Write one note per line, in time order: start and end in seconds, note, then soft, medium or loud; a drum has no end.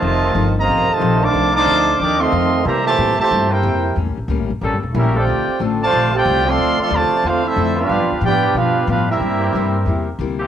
0.00 0.34 F1 loud
0.00 0.52 C3 medium
0.00 0.52 D#3 loud
0.00 0.23 F3 soft
0.00 0.52 A3 medium
0.00 0.24 C4 medium
0.00 0.24 D#4 soft
0.00 0.54 F4 medium
0.00 0.24 A4 medium
0.00 0.53 C5 medium
0.00 0.53 D#5 medium
0.00 0.53 A5 loud
0.22 0.31 D#3 loud
0.22 0.32 A3 medium
0.22 0.32 C4 medium
0.22 0.32 F4 loud
0.34 0.67 G1 medium
0.34 0.56 F3 medium
0.34 0.57 C4 medium
0.34 0.57 D#4 medium
0.34 0.57 A4 medium
0.57 0.89 C3 medium
0.57 0.89 D#3 medium
0.57 0.89 A#3 medium
0.57 0.90 F4 loud
0.57 0.90 C5 loud
0.57 0.90 D#5 loud
0.57 0.90 A#5 loud
0.67 0.87 A1 medium
0.67 0.89 F3 soft
0.67 0.90 C4 soft
0.67 0.90 D#4 soft
0.67 0.90 A4 medium
0.89 1.22 C3 loud
0.89 1.19 D#3 medium
0.89 1.20 A3 medium
0.89 1.23 F4 medium
0.89 1.22 C5 medium
0.89 1.23 D#5 medium
0.89 1.22 A5 loud
0.89 muted upright bass stroke soft
0.99 1.33 A#1 loud
0.99 1.50 D#3 loud
0.99 1.22 F3 medium
0.99 1.50 A3 medium
0.99 1.22 C4 medium
0.99 1.50 C4 medium
0.99 1.22 D#4 medium
0.99 1.50 F4 loud
0.99 1.23 A4 medium
1.21 1.54 D#3 loud
1.21 1.53 A3 loud
1.21 1.53 D4 loud
1.21 1.55 C5 medium
1.21 1.55 F5 medium
1.21 1.55 A5 medium
1.21 1.55 D6 loud
1.33 1.66 C2 medium
1.33 1.55 F3 soft
1.33 1.55 C4 medium
1.33 1.56 D#4 medium
1.33 1.56 A4 medium
1.54 1.97 A3 loud
1.54 1.96 D4 loud
1.54 1.96 D#4 loud
1.54 1.98 C5 loud
1.54 1.98 F5 loud
1.54 1.98 A5 loud
1.54 1.98 D6 loud
1.65 1.98 D2 medium
1.65 1.81 D#3 medium
1.65 1.87 F3 medium
1.65 1.81 A3 medium
1.65 1.87 C4 medium
1.65 1.81 C4 medium
1.65 1.88 D#4 medium
1.65 1.81 F4 loud
1.65 1.88 A4 medium
1.99 2.31 D#2 medium
1.99 2.20 F3 medium
1.99 2.21 C4 medium
1.99 2.18 D4 loud
1.99 2.21 D#4 medium
1.99 2.22 A4 medium
1.99 2.19 A#4 medium
1.99 2.19 D#5 medium
1.99 2.19 G5 medium
1.99 2.19 D6 loud
2.19 2.62 D#3 medium
2.19 2.62 D#3 loud
2.19 2.62 A3 loud
2.19 2.63 A3 loud
2.19 2.62 C4 loud
2.19 2.63 C4 loud
2.19 2.63 F4 loud
2.19 2.62 A4 medium
2.19 2.62 D#5 medium
2.19 2.62 F5 loud
2.19 2.62 C6 loud
2.32 2.64 F2 loud
2.32 2.53 F3 medium
2.32 2.54 C4 medium
2.32 2.54 D#4 medium
2.32 2.55 A4 medium
2.63 2.97 C3 medium
2.63 2.87 C3 medium
2.63 2.83 E3 loud
2.63 2.85 G3 medium
2.63 2.87 G3 medium
2.63 2.85 A#3 medium
2.63 2.85 G4 medium
2.63 2.86 C5 medium
2.63 2.86 E5 medium
2.63 2.66 A5 medium
2.63 2.86 A#5 loud
2.68 2.88 A#3 medium
2.68 2.88 E4 medium
2.84 3.15 A#2 medium
2.84 3.15 E3 medium
2.84 3.15 A3 medium
2.84 3.16 G4 loud
2.84 3.17 C5 medium
2.84 3.16 E5 medium
2.84 3.16 A5 loud
2.98 3.17 A2 medium
2.98 3.19 C3 medium
2.98 3.19 G3 medium
2.98 3.20 A#3 medium
2.98 3.20 E4 medium
3.17 3.48 A#2 medium
3.17 3.48 E3 medium
3.17 3.27 E3 medium
3.17 3.48 A3 medium
3.17 3.27 A#3 medium
3.17 3.27 C4 medium
3.17 3.28 G4 loud
3.17 3.49 G4 medium
3.17 3.49 C5 medium
3.17 3.49 E5 medium
3.17 3.49 A5 loud
3.17 muted upright bass stroke soft
3.31 3.63 G2 medium
3.31 3.52 C3 medium
3.31 3.52 G3 medium
3.31 3.53 A#3 medium
3.31 3.53 E4 medium
3.50 3.96 A#3 medium
3.50 3.96 E4 medium
3.50 3.96 G4 medium
3.50 3.96 A#4 medium
3.50 3.96 C5 medium
3.50 3.96 G5 medium
3.62 3.95 F2 loud
3.62 3.84 C3 medium
3.62 3.85 G3 medium
3.62 3.85 A#3 medium
3.62 3.85 E4 medium
3.95 4.08 E2 medium
3.95 4.17 A2 medium
3.95 4.17 G3 medium
3.95 4.18 A#3 medium
3.95 4.18 C#4 medium
4.07 4.17 C#2 medium
4.17 4.27 A1 medium
4.28 4.40 C#2 medium
4.28 4.50 A2 medium
4.28 4.51 G3 medium
4.28 4.51 A#3 medium
4.28 4.51 C#4 medium
4.39 4.50 A1 medium
4.50 4.61 G1 medium
4.61 4.73 A1 medium
4.61 4.83 A2 soft
4.61 4.75 G3 loud
4.61 4.83 G3 medium
4.61 4.75 A#3 medium
4.61 4.84 A#3 medium
4.61 4.75 C#4 medium
4.61 4.84 C#4 medium
4.61 4.75 A4 loud
4.73 4.83 G1 medium
4.83 4.94 E1 medium
4.94 5.26 A#1 loud
4.94 5.16 A2 medium
4.94 5.13 G3 medium
4.94 5.16 G3 medium
4.94 5.16 A#3 medium
4.94 5.13 C#4 medium
4.94 5.16 C#4 medium
4.94 5.14 C#4 medium
4.94 5.13 E4 medium
4.94 5.14 G4 medium
4.94 5.14 A#4 medium
4.94 5.14 E5 medium
5.15 5.24 F3 medium
5.15 5.61 A3 loud
5.15 5.60 C4 medium
5.15 5.24 C4 medium
5.15 5.23 D4 medium
5.15 5.61 F4 medium
5.15 5.60 G4 medium
5.15 5.23 A4 loud
5.15 5.61 C5 medium
5.15 5.61 D5 medium
5.15 5.61 G5 loud
5.27 5.46 D2 medium
5.27 5.48 D3 medium
5.27 5.49 A3 soft
5.27 5.49 C4 medium
5.27 5.49 F4 medium
5.47 muted upright bass stroke soft
5.59 5.92 A1 medium
5.59 5.81 D3 medium
5.59 6.09 F3 medium
5.59 5.81 A3 medium
5.59 6.09 C4 medium
5.59 5.82 C4 medium
5.59 6.08 D4 medium
5.59 5.82 F4 medium
5.59 6.08 A4 loud
5.82 6.12 C3 medium
5.82 6.12 F3 medium
5.82 6.11 A3 loud
5.82 6.12 F4 medium
5.82 6.12 C5 loud
5.82 6.11 D5 loud
5.82 6.12 A5 loud
5.92 6.25 A#1 medium
5.92 6.14 D3 soft
5.92 6.14 A3 medium
5.92 6.14 C4 soft
5.92 6.15 F4 medium
6.13 6.22 F3 medium
6.13 6.44 A3 medium
6.13 6.22 C4 medium
6.13 6.45 C4 loud
6.13 6.22 D4 medium
6.13 6.47 F4 medium
6.13 6.46 G4 medium
6.13 6.22 A4 loud
6.13 6.47 C5 medium
6.13 6.47 D5 medium
6.13 6.47 G5 loud
6.25 6.57 C2 loud
6.25 6.46 D3 medium
6.25 6.47 A3 medium
6.25 6.47 C4 medium
6.25 6.47 F4 medium
6.45 6.79 F3 loud
6.45 6.78 A3 loud
6.45 6.79 C4 loud
6.45 6.80 A4 loud
6.45 6.80 D5 medium
6.45 6.80 F5 loud
6.45 6.80 C6 loud
6.57 6.77 D2 medium
6.57 6.79 D3 medium
6.57 6.80 A3 soft
6.57 6.80 C4 medium
6.57 6.80 F4 medium
6.78 7.21 F3 loud
6.78 6.90 F3 loud
6.78 6.91 A3 loud
6.78 7.21 C4 medium
6.78 6.91 C4 medium
6.78 7.21 D4 medium
6.78 7.21 A4 loud
6.78 6.92 A4 medium
6.78 6.92 D5 medium
6.78 6.92 F5 medium
6.78 muted upright bass stroke soft
6.82 6.92 C6 loud
6.90 7.09 D#2 medium
6.90 7.24 C3 medium
6.90 7.12 D3 medium
6.90 7.24 F3 medium
6.90 7.12 A3 medium
6.90 7.24 A3 medium
6.90 7.12 C4 medium
6.90 7.13 F4 medium
6.94 7.26 F4 medium
6.94 7.26 C5 medium
6.94 7.26 D5 medium
6.94 7.26 A5 loud
7.24 7.56 E2 medium
7.24 7.45 D3 soft
7.24 7.46 A3 soft
7.24 7.43 A3 medium
7.24 7.46 C4 medium
7.24 7.44 C4 loud
7.24 7.46 D4 medium
7.24 7.45 F4 medium
7.24 7.47 F4 medium
7.24 7.45 A4 medium
7.24 7.45 C5 medium
7.24 7.45 F5 loud
7.45 7.77 A3 loud
7.45 7.77 C4 medium
7.45 7.78 D4 medium
7.45 7.77 E4 medium
7.45 7.78 A4 medium
7.45 7.78 C5 medium
7.45 7.78 E5 loud
7.56 7.88 F2 loud
7.56 7.78 D3 medium
7.56 7.78 A3 medium
7.56 7.79 C4 medium
7.56 7.79 F4 medium
7.75 8.19 F3 loud
7.75 8.19 B3 loud
7.75 8.20 B3 medium
7.75 8.19 D4 loud
7.75 8.20 D4 loud
7.75 8.19 F4 loud
7.75 8.20 F4 medium
7.79 8.21 D4 medium
7.79 8.20 G4 medium
7.79 8.21 B4 medium
7.79 8.21 F5 loud
7.89 8.00 G2 medium
7.89 8.11 G2 medium
7.89 8.11 F3 soft
7.89 8.12 B3 medium
7.89 8.12 D4 medium
8.00 8.10 F2 medium
8.11 8.21 D2 medium
8.21 8.43 G2 medium
8.21 8.53 A2 medium
8.21 8.43 F3 medium
8.21 8.43 B3 medium
8.21 8.54 B3 medium
8.21 8.44 D4 medium
8.21 8.54 D4 medium
8.21 8.54 D5 medium
8.25 8.54 F4 medium
8.25 8.54 G4 medium
8.25 8.54 B4 medium
8.25 8.54 G5 loud
8.41 8.85 F3 loud
8.41 8.85 B3 medium
8.41 8.85 D4 loud
8.41 8.85 G4 loud
8.54 8.76 G2 soft
8.54 8.86 B2 medium
8.54 8.77 F3 medium
8.54 8.77 B3 medium
8.54 8.89 B3 medium
8.54 8.89 D4 medium
8.54 8.77 D4 soft
8.54 8.89 D4 medium
8.54 8.88 F4 medium
8.54 8.89 G4 medium
8.54 8.89 B4 medium
8.54 8.89 F5 medium
8.87 9.09 G2 medium
8.87 9.19 A2 loud
8.87 9.09 F3 medium
8.87 9.09 B3 medium
8.87 9.08 B3 medium
8.87 9.10 D4 medium
8.87 9.07 D4 medium
8.87 9.08 D4 medium
8.87 9.08 F4 medium
8.87 9.08 G4 medium
8.87 9.08 B4 medium
8.87 9.08 F5 medium
9.10 10.16 G3 medium
9.10 10.16 A#3 medium
9.10 10.16 C4 medium
9.10 10.16 E4 medium
9.10 10.16 G4 medium
9.10 10.16 A#4 medium
9.10 10.16 E5 medium
9.19 9.52 G2 medium
9.19 9.41 C3 soft
9.19 9.42 G3 soft
9.19 9.42 A#3 medium
9.19 9.42 E4 medium
9.39 9.83 E3 medium
9.39 9.83 A#3 medium
9.39 9.83 C4 medium
9.39 9.83 G4 loud
9.53 9.85 G2 medium
9.53 9.75 C3 medium
9.53 9.76 G3 medium
9.53 9.76 A#3 medium
9.53 9.76 E4 medium
9.86 10.18 E2 medium
9.86 10.07 C3 medium
9.86 10.08 G3 medium
9.86 10.08 A#3 medium
9.86 10.09 E4 medium
10.19 10.47 D2 medium
10.19 10.40 C3 medium
10.19 10.41 G3 medium
10.19 10.41 A#3 medium
10.19 10.41 E4 medium
10.39 10.47 E3 loud
10.39 10.47 A#3 medium
10.39 10.47 C4 loud
10.39 10.47 G4 loud